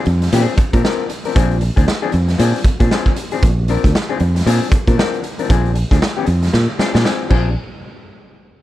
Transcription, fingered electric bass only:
0.07 0.27 F2 medium
0.33 0.45 A#2 loud
0.58 muted fingered electric bass stroke soft
0.74 0.82 A#2 loud
1.36 1.69 A#1 loud
1.77 1.85 D2 medium
2.14 2.34 F2 medium
2.39 2.52 A#2 loud
2.65 muted fingered electric bass stroke medium
2.80 2.89 A#2 loud
3.43 3.76 A#1 loud
3.84 3.92 D2 medium
4.20 4.41 F2 medium
4.46 4.59 A#2 loud
4.72 muted fingered electric bass stroke medium
4.88 4.96 A#2 loud
5.50 5.83 A#1 loud
5.91 6.00 D2 medium
6.28 6.48 F2 medium
6.54 6.66 A#2 loud
6.79 muted fingered electric bass stroke soft
6.95 7.03 A#2 medium
7.31 7.55 A#1 loud

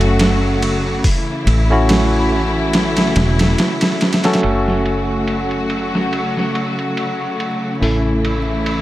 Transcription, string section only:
0.00 4.38 C#3 medium
0.00 1.01 F#3 medium
0.00 1.00 A3 medium
0.00 1.01 F#4 medium
1.04 4.40 E3 medium
1.04 4.40 A3 medium
1.04 4.39 E4 medium
4.42 8.82 C#3 medium
4.42 7.77 F#3 medium
4.42 8.82 A3 medium
4.42 7.77 F#4 medium
7.82 8.82 E3 medium
7.82 8.82 E4 medium

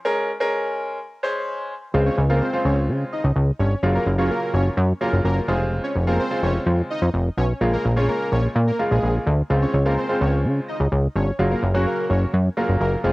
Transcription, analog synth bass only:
1.94 2.10 C#2 loud
2.18 2.41 C#2 loud
2.65 2.90 C#2 medium
2.89 3.04 C#3 loud
3.24 3.32 C#2 medium
3.36 3.51 C#2 medium
3.59 3.75 G1 loud
3.83 3.99 F#1 loud
4.07 4.30 F#1 loud
4.54 4.70 F#1 loud
4.77 4.93 F#2 loud
5.13 5.21 F#1 medium
5.25 5.41 F#1 loud
5.48 5.80 F1 loud
5.96 6.19 F1 loud
6.43 6.59 F1 medium
6.67 6.82 F2 loud
7.02 7.10 F2 loud
7.14 7.30 F1 loud
7.38 7.53 B1 loud
7.61 7.77 A#1 loud
7.85 8.09 A#1 loud
8.32 8.48 A#1 medium
8.56 8.71 A#2 loud
8.91 8.99 A#1 medium
9.03 9.19 A#1 loud
9.26 9.42 D2 loud
9.50 9.66 C#2 loud
9.74 9.97 C#2 medium
10.21 10.46 C#2 medium
10.45 10.60 C#3 loud
10.80 10.88 C#2 medium
10.92 11.08 C#2 loud
11.15 11.31 G1 loud
11.39 11.55 F#1 loud
11.63 11.86 F#1 loud
12.10 12.26 F#1 loud
12.33 12.49 F#2 loud
12.69 12.77 F#1 medium
12.80 12.96 F#1 loud
13.04 13.13 F1 loud

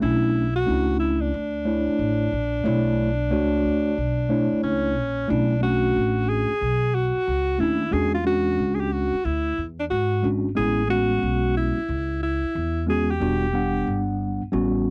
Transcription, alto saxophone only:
0.02 0.52 E4 medium
0.56 0.97 F#4 loud
1.00 1.22 E4 medium
1.21 4.63 D4 medium
4.63 5.32 C#4 medium
5.30 5.62 D4 medium
5.63 6.30 F#4 loud
6.29 6.96 G#4 loud
6.95 7.61 F#4 loud
7.60 7.95 E4 loud
7.93 8.14 G#4 loud
8.14 8.25 F4 medium
8.27 8.76 F#4 loud
8.75 8.82 G#4 medium
8.80 8.94 G4 medium
8.92 9.26 F#4 medium
9.25 9.63 E4 loud
9.80 9.85 D4 medium
9.91 10.28 F#4 loud
10.57 10.87 G#4 loud
10.90 11.52 F#4 loud
11.57 12.18 E4 medium
12.23 12.84 E4 medium
12.90 13.12 G#4 medium
13.11 14.08 G4 medium

